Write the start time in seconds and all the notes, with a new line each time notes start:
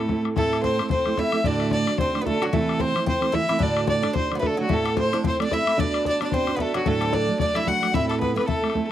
Already playing: A2 A3 A4
0.08 A3 C4 E4 A4, bodhran
0.25 bodhran
0.36 A2 A3 C4 E4 A4, bodhran
0.53 bodhran
0.63 C4 C5, bodhran
0.79 A3 C4 E4 A4, bodhran
0.90 C4 C5, bodhran
1.06 A3 C4 E4 A4, bodhran
1.17 A3 C4 E4 A4 E5, bodhran
1.32 A3 C4 E4 A4, bodhran
1.44 D2 A2 D3 A3 D4 F#4 D5, bodhran
1.60 E5, bodhran
1.71 D4 D5, bodhran
1.87 D3 A3 D4 F#4, bodhran
1.98 C4 C5, bodhran
2.13 D3 A3 D4 F#4, bodhran
2.21 D3 B3 B4
2.25 A3 D4 F#4 A4, bodhran
2.40 D3 F#3 A3 D4 F#4, bodhran
2.52 C3 E3 A3 C4 E4 A4, bodhran
2.69 bodhran
2.79 C4 C5, bodhran
2.95 E3 A3 C4 E4, bodhran
3.06 C4 C5, bodhran
3.20 E3 A3 C4 E4, bodhran
3.32 E3 A3 C4 E4 E5, bodhran
3.49 E3 A3 C4 E4, bodhran
3.59 D2 A2 D3 A3 D4 F#4 D5, bodhran
3.77 bodhran
3.87 D4 D5, bodhran
4.02 D3 A3 D4 F#4, bodhran
4.13 C4 C5, bodhran
4.30 D3 A3 D4 F#4, bodhran
4.35 B3
4.39 D3 A3 D4 A4 B4, bodhran
4.43 F#4 A4
4.57 D3 F#3 A3 D4 F#4
4.69 A2 A3 C4 E4 A4, bodhran
4.73 A4
4.85 B3, bodhran
4.97 C4 C5, bodhran
5.12 A3 C4 D4 E4 A4, bodhran
5.24 C4 C5, bodhran
5.40 A3 C4 D4 E4 A4 D5, bodhran
5.51 A3 C4 E4 A4 E5, bodhran
5.66 A3 C4 E4 A4, bodhran
5.77 B3 D4 F#4 B4 D5, bodhran
5.94 bodhran
6.05 D4 D5, bodhran
6.20 B3 D4 F#4 B4 D5, bodhran
6.32 C4 C5, bodhran
6.47 B3 D4 F#4 B4, bodhran
6.54 B3 B4
6.59 A3 B3 D4 F#4 A4 B4, bodhran
6.74 F#3 B3 D4 F#4 B4, bodhran
6.85 D2 A2 F#3 A3 D4 A4, bodhran
7.01 C4, bodhran
7.12 D4 D5, bodhran
7.28 F#3 A3 D4 A4
7.39 D4 D5, bodhran
7.54 F#3 A3 D4 E4 A4 E5, bodhran
7.65 F#3 A3 D4 F#4 A4 F#5, bodhran
7.82 F#3 A3 D4 A4, bodhran
7.93 A2 A3 C4 E4 A4 E5, bodhran
8.09 A3 A4, bodhran
8.20 B3 B4, bodhran
8.36 A3 B3 C4 E4 A4 B4, bodhran
8.48 A3 A4, bodhran
8.62 A3 C4 E4 A4, bodhran
8.70 bodhran
8.75 A3 C4 E4 A4, bodhran